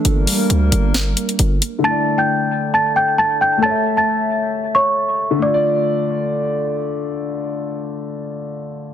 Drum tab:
HH |x-o-x-x-x-xxx-x-|----------------|----------------|----------------|
SD |--------o-------|----------------|----------------|----------------|

HH |----------------|
SD |----------------|